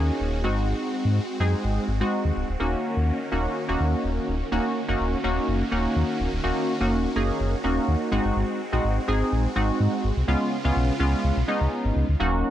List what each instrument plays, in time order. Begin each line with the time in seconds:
Already playing: sub bass D#2, supersaw synth D#3 A#3 C#4 F#4, analog polysynth A#3 C#4 D#4 G#4
0.20 sub bass D#1
0.44 sub bass G#1, supersaw synth G#3 C4, analog polysynth G#3 C4 D#4 F#4
1.05 sub bass G#2
1.40 sub bass F#2, analog polysynth G#3 C4 D#4 G#4
1.64 sub bass G#1
1.88 sub bass G#1
2.01 analog polysynth G#3 C4 D#4 F#4
2.25 sub bass D#2
2.36 sub bass C#1
2.49 sub bass D1
2.60 sub bass D#1, supersaw synth D#3 A#3 C#4, analog polysynth A#3 C#4 D#4 F#4
2.97 sub bass D#2
3.32 sub bass D#1, analog polysynth A#3 C#4 D#4 F#4
3.69 sub bass D#1, analog polysynth A#3 C#4 D#4 F#4
3.80 sub bass D#2
4.04 sub bass D#1
4.28 sub bass D1
4.52 sub bass D#1, supersaw synth D#3 A#3 C#4 F#4, analog polysynth A#3 C#4 D#4 F#4
4.89 sub bass F#1, analog polysynth A#3 C#4 D#4 F#4
5.00 sub bass D#1
5.24 sub bass D#1, analog polysynth A#3 C#4 D#4 F#4
5.48 sub bass F#1
5.71 sub bass D#1, analog polysynth A#3 C#4 D#4 F#4
5.96 sub bass D#2
6.20 sub bass D#1
6.33 sub bass D1
6.44 sub bass D#1, analog polysynth A#3 C#4 D#4 F#4
6.80 sub bass F#1, analog polysynth A#3 C#4 D#4 F#4
6.92 sub bass D#1
7.16 sub bass F#1, analog polysynth A#3 C#4 D#4 G#4
7.40 sub bass F#1
7.64 sub bass D#1, analog polysynth A#3 C#4 D#4 F#4
7.88 sub bass D#2
8.12 sub bass G#1, analog polysynth G#3 C4 D#4 F#4, supersaw synth G#3 C4
8.25 sub bass G1
8.36 sub bass G#1
8.72 sub bass A#1, analog polysynth G#3 C4 D#4 F#4
8.84 sub bass G#1
9.08 sub bass G#1, analog polysynth G#3 C4 D#4 G#4
9.32 sub bass A#1
9.56 sub bass G#1, analog polysynth G#3 C4 D#4 F#4
9.80 sub bass G#2
10.04 sub bass G#1
10.17 sub bass C2
10.28 sub bass C#2, supersaw synth C#3 B3 F4, analog polysynth G#3 B3 C#4 F4
10.65 sub bass C#2, analog polysynth G#3 B3 C#4 F4
10.76 sub bass B1
11.00 sub bass C#2, analog polysynth G#3 B3 C#4 F4
11.24 sub bass C#2
11.37 sub bass B1
11.48 analog polysynth G#3 B3 C#4 D#4
11.61 sub bass C#2
11.85 sub bass G#1
11.96 sub bass C#2
12.09 sub bass D2
12.20 sub bass D#1, analog polysynth F#3 A#3 C#4 D#4 F#4